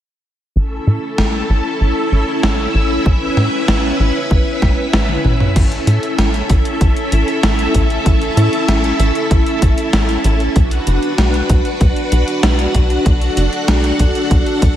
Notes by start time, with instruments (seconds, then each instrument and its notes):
0.56 analog synth bass A1, string machine C#4 E4 A4 E5
0.87 analog synth bass A2
1.18 analog synth bass A1, snare
1.50 analog synth bass A1
1.81 analog synth bass A1
2.12 analog synth bass A1
2.43 analog synth bass A1, snare
2.75 analog synth bass A1
3.06 analog synth bass A1, string machine B4, kick
3.37 analog synth bass A2, snare
3.68 analog synth bass A1, snare
4.00 analog synth bass A1
4.31 analog synth bass A1, kick
4.62 analog synth bass A1, kick, snare
4.93 analog synth bass A1, snare
5.09 high tom
5.25 analog synth bass A1, mid tom
5.40 mid tom
5.56 analog synth bass A1, string machine C#4 E4 A4 E5, kick, closed hi-hat, crash
5.72 closed hi-hat
5.87 analog synth bass A2, closed hi-hat
6.03 closed hi-hat
6.18 analog synth bass A1, snare, closed hi-hat
6.34 closed hi-hat
6.50 analog synth bass A1, kick, closed hi-hat
6.65 closed hi-hat
6.81 analog synth bass A1, kick, closed hi-hat
6.97 closed hi-hat
7.12 analog synth bass A1, closed hi-hat
7.28 closed hi-hat
7.43 analog synth bass A1, snare, closed hi-hat
7.59 closed hi-hat
7.74 analog synth bass A1, kick, closed hi-hat
7.90 closed hi-hat
8.06 analog synth bass A1, kick, closed hi-hat
8.22 closed hi-hat
8.37 analog synth bass A2, closed hi-hat
8.53 closed hi-hat
8.68 analog synth bass A1, snare, closed hi-hat
8.84 closed hi-hat
8.99 analog synth bass A1, closed hi-hat
9.15 closed hi-hat
9.31 analog synth bass A1, kick, closed hi-hat
9.46 closed hi-hat
9.62 analog synth bass A1, kick, closed hi-hat
9.78 closed hi-hat
9.93 analog synth bass A1, snare, closed hi-hat
10.09 closed hi-hat
10.24 analog synth bass A1, closed hi-hat
10.40 closed hi-hat
10.56 analog synth bass B1, string machine D4 F#4 B4 F#5, kick, closed hi-hat
10.71 closed hi-hat
10.87 analog synth bass F#1, closed hi-hat
11.03 closed hi-hat
11.18 analog synth bass B1, snare, closed hi-hat
11.34 closed hi-hat
11.49 analog synth bass B1, kick, closed hi-hat
11.65 closed hi-hat
11.81 analog synth bass B1, kick, closed hi-hat
11.96 closed hi-hat
12.12 analog synth bass B1, closed hi-hat
12.28 closed hi-hat
12.43 analog synth bass B1, snare, closed hi-hat
12.59 closed hi-hat
12.75 analog synth bass B1, kick, closed hi-hat
12.90 closed hi-hat
13.06 analog synth bass B1, string machine A4, kick, closed hi-hat
13.21 closed hi-hat
13.37 analog synth bass F#1, closed hi-hat
13.53 closed hi-hat
13.68 analog synth bass B1, snare, closed hi-hat
13.84 closed hi-hat
13.99 analog synth bass B1, kick, closed hi-hat
14.15 closed hi-hat
14.31 analog synth bass B1, kick, closed hi-hat
14.46 closed hi-hat
14.62 analog synth bass B1, kick, closed hi-hat